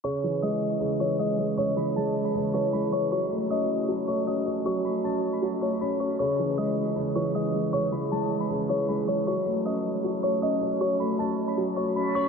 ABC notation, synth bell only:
X:1
M:4/4
L:1/16
Q:1/4=156
K:C#m
V:1 name="Synth bell"
[cc']4 [dd']4 z2 [cc']2 [dd']4 | [cc']2 [bb']2 [aa']3 [bb'] z2 [cc']2 [bb']2 [cc']2 | [cc']4 [dd']4 z2 [cc']2 [dd']4 | [cc']2 [bb']2 [aa']3 [bb'] z2 [cc']2 [bb']2 [cc']2 |
[cc']4 [dd']4 z2 [cc']2 [dd']4 | [cc']2 [bb']2 [aa']3 [bb'] z2 [cc']2 [bb']2 [cc']2 | [cc']4 [dd']4 z2 [cc']2 [dd']4 | [cc']2 [bb']2 [aa']3 [bb'] z2 [cc']2 [bb']2 [cc']2 |]